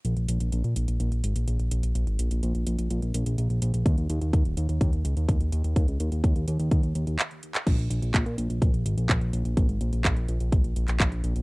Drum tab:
CC |----------------|----------------|----------------|----------------|
HH |xxxxxxxxxxxxxxxx|xxxxxxxxxxxxxxxx|xxxxxxxxxxxxxxxx|xxxxxxxxxxxxxxxx|
CP |----------------|----------------|----------------|------------x--x|
BD |----------------|----------------|o---o---o---o---|o---o---o-------|

CC |x---------------|----------------|
HH |xxxxxxxxxxxxxxxx|xxxxxxxxxxxxxxxx|
CP |----x-------x---|----x------xx---|
BD |o---o---o---o---|o---o---o---o---|